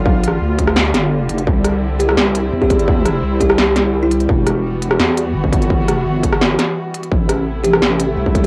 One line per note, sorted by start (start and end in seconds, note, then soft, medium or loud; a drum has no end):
0.00 0.20 B1 loud
0.00 4.25 D3 medium
0.00 7.08 G3 medium
0.00 1.43 B3 medium
0.00 1.44 F4 medium
0.06 kick loud
0.20 0.40 A#1 loud
0.24 closed hi-hat medium
0.28 cross-stick medium
0.41 0.93 D2 loud
0.59 kick medium
0.59 closed hi-hat medium
0.67 cross-stick medium
0.76 snare loud
0.94 1.28 G1 loud
0.94 cross-stick soft
0.94 snare medium
0.94 closed hi-hat medium
1.29 1.46 F1 loud
1.29 closed hi-hat medium
1.38 closed hi-hat soft
1.47 2.16 C2 loud
1.47 4.26 C4 medium
1.47 4.26 E4 medium
1.47 kick loud
1.64 cross-stick medium
1.64 closed hi-hat medium
1.99 2.21 G4 medium
1.99 closed hi-hat medium
2.09 cross-stick medium
2.17 2.51 C2 loud
2.17 snare loud
2.35 closed hi-hat medium
2.53 3.22 E2 loud
2.62 2.83 G4 medium
2.62 kick medium
2.70 kick loud
2.70 closed hi-hat medium
2.79 closed hi-hat soft
2.88 kick loud
3.06 cross-stick medium
3.06 closed hi-hat medium
3.23 4.28 C2 loud
3.40 3.46 G4 medium
3.40 kick medium
3.40 closed hi-hat medium
3.49 3.55 G4 medium
3.49 cross-stick medium
3.58 snare loud
3.76 cross-stick soft
3.76 snare medium
3.76 closed hi-hat medium
4.03 4.29 E4 loud
4.11 closed hi-hat medium
4.20 closed hi-hat soft
4.29 4.98 E1 loud
4.29 7.09 E3 medium
4.29 7.09 B3 medium
4.29 7.09 F#4 medium
4.29 kick loud
4.47 cross-stick medium
4.47 closed hi-hat medium
4.82 closed hi-hat medium
4.91 cross-stick medium
5.00 5.34 E2 loud
5.00 snare loud
5.17 closed hi-hat medium
5.35 5.84 G1 loud
5.44 kick medium
5.53 kick loud
5.53 closed hi-hat medium
5.62 closed hi-hat soft
5.70 kick loud
5.84 6.04 F#1 loud
5.88 cross-stick medium
5.88 closed hi-hat medium
6.05 6.57 G1 loud
6.23 kick medium
6.23 closed hi-hat medium
6.33 cross-stick medium
6.41 snare loud
6.59 cross-stick soft
6.59 snare medium
6.59 closed hi-hat medium
6.94 closed hi-hat medium
7.03 closed hi-hat soft
7.11 7.81 A1 loud
7.11 8.47 C3 medium
7.11 8.47 A3 medium
7.11 8.47 B3 medium
7.11 8.47 E4 medium
7.11 kick loud
7.29 cross-stick medium
7.29 closed hi-hat medium
7.64 7.85 G4 medium
7.64 closed hi-hat medium
7.73 cross-stick medium
7.82 8.16 A1 loud
7.82 snare loud
8.00 closed hi-hat medium
8.17 8.47 C2 loud
8.26 kick medium
8.35 kick loud
8.35 closed hi-hat medium
8.44 8.47 G4 medium